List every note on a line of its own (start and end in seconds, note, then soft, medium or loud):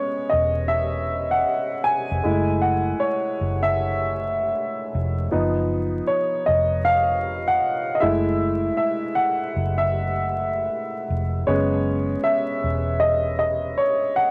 0.00 2.23 G#3 medium
0.00 2.26 B3 soft
0.00 2.25 C#4 medium
0.00 0.32 C#5 medium
0.30 1.44 E1 medium
0.30 0.70 D#5 medium
0.68 1.34 E5 loud
1.31 1.86 F#5 loud
1.84 2.64 G#5 loud
2.11 2.23 F1 medium
2.23 2.92 F#1 loud
2.23 3.35 G#3 medium
2.23 3.35 A3 soft
2.23 3.36 E4 medium
2.61 3.02 F#5 medium
3.00 3.59 C#5 medium
3.41 4.52 F#1 medium
3.63 4.89 E5 loud
4.95 5.28 F1 medium
5.31 6.00 F#1 medium
5.31 6.43 F3 medium
5.31 6.43 B3 medium
5.31 6.43 D#4 medium
6.07 6.48 C#5 medium
6.46 7.59 F1 medium
6.46 6.86 D#5 medium
6.85 7.50 F5 loud
7.48 7.92 F#5 loud
7.95 8.01 D#5 medium
8.00 8.69 F#1 medium
8.00 11.05 G#3 medium
8.00 11.05 A3 medium
8.00 11.05 E4 medium
8.00 8.76 E5 medium
8.77 9.17 E5 medium
9.15 9.80 F#5 loud
9.56 10.67 F#1 medium
9.78 11.04 E5 medium
11.10 11.43 F1 medium
11.47 12.15 F#1 loud
11.47 12.59 G#3 medium
11.47 12.59 B3 medium
11.47 12.59 C#4 medium
11.47 12.26 C#5 medium
12.24 13.03 E5 medium
12.64 13.75 E1 medium
13.00 13.37 D#5 loud
13.39 13.79 D#5 medium
13.77 14.17 C#5 medium
14.16 14.31 F#5 loud